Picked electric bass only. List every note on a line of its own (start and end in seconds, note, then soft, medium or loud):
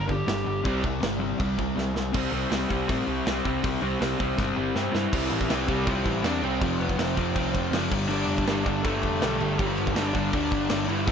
0.00 0.20 G1 medium
0.28 0.42 G1 medium
0.47 0.61 G1 medium
0.65 0.80 C2 loud
0.84 0.99 C2 medium
1.02 1.32 G1 medium
1.40 1.69 C2 loud
1.76 1.91 C2 medium
1.95 2.10 C2 medium
2.14 2.26 C2 medium
2.32 2.44 C2 medium
2.52 2.63 C2 medium
2.70 2.82 C2 medium
2.89 3.00 A2 loud
3.08 3.19 C2 medium
3.27 3.38 C2 medium
3.45 3.56 C2 medium
3.64 3.75 C2 loud
3.82 3.94 C2 medium
4.01 4.12 C2 loud
4.20 4.31 C2 medium
4.38 4.50 G1 loud
4.58 4.69 G1 medium
4.75 4.87 G2 loud
4.95 5.06 G2 medium
5.13 5.30 C2 loud
5.32 5.49 A1 medium
5.51 5.68 C2 loud
5.69 5.86 C2 medium
5.87 6.05 C2 loud
6.06 6.23 A1 medium
6.24 6.41 E2 medium
6.42 6.60 C2 medium
6.62 6.79 F1 loud
6.80 6.97 F1 medium
6.98 7.16 F1 loud
7.18 7.35 F1 loud
7.36 7.53 C2 medium
7.54 7.71 F1 medium
7.72 7.90 F#1 medium
7.91 8.07 G1 loud
8.08 8.26 G1 loud
8.26 8.45 F1 medium
8.47 8.64 G1 loud
8.66 8.83 G1 loud
8.84 9.02 G1 loud
9.03 9.20 F1 medium
9.22 9.39 B1 loud
9.41 9.58 G1 medium
9.59 9.76 G1 medium
9.79 9.95 G1 medium
9.97 10.14 G1 loud
10.15 10.32 G1 loud
10.33 10.50 D2 loud
10.52 10.69 G1 medium
10.70 10.87 G1 medium
10.89 11.09 G1 medium
11.08 11.12 C2 loud